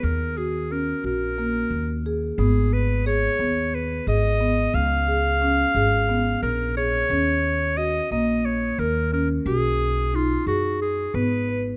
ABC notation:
X:1
M:7/8
L:1/16
Q:1/4=89
K:Ebm
V:1 name="Clarinet"
B2 A2 B2 B6 z2 | A2 c2 d4 c2 e4 | f8- f2 B2 d2- | d4 e2 e2 d2 B2 B2 |
^G4 F2 ^F2 G2 =B3 z |]
V:2 name="Marimba"
C2 G2 D2 G2 B,4 A2 | C4 A2 C4 A2 C2- | C2 A2 D2 A2 C4 A2 | D4 G2 B,4 B2 D2 |
^F4 ^D2 ^G4 =B,2 =B2 |]
V:3 name="Upright bass" clef=bass
E,,6 B,,,4 E,,4 | A,,,6 E,,4 A,,,4 | D,,6 A,,,4 B,,,4 | E,,6 B,,,4 E,,4 |
=B,,,6 ^F,,4 ^G,,,4 |]